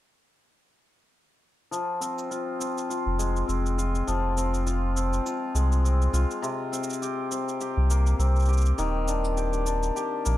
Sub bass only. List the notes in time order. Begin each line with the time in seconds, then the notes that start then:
3.06 F1
3.48 F1
4.08 F1
5.55 C2
6.13 C2
7.77 C2
8.19 C2
8.78 D#1
10.26 A#1